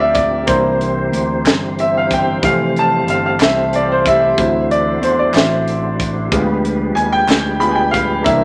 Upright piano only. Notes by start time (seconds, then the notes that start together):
Already playing: A3 A#3 F4 D5 F5
0.00 E5
0.14 D5
0.46 A#3 D4 E4 C5
1.80 E5
1.97 F5
2.13 G5
2.42 E3 G3 A3 F5
2.79 A5
3.10 F5
3.26 F5
3.42 E5
3.75 D5
3.92 C5
4.06 G3 A3 E4 E5
4.38 F#3 C4 E4
4.71 D5
5.03 C5
5.19 D5
5.35 F#3 C4 E4 E5
6.32 G#3 B3 F4
6.95 G#5
7.12 G5
7.59 G#3 B3 F4 B5
7.71 G#5
7.75 G5
7.91 F5
8.23 A#3 D4 E4 E5